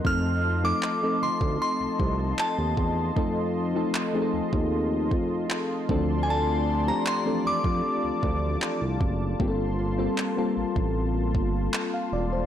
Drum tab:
CP |----x-------x---|----x-------x---|----x-------x---|----x-------x---|
BD |o------o--o---o-|o------o--o---o-|-------o--o---o-|o------o--o-----|